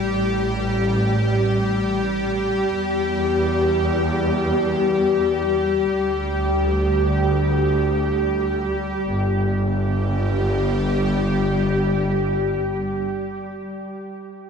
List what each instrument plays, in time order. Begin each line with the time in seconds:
Already playing: double bass section A1, synth drone G3 G4
2.73 double bass section E2
5.89 double bass section D2
9.06 double bass section G1, synth drone G3 G4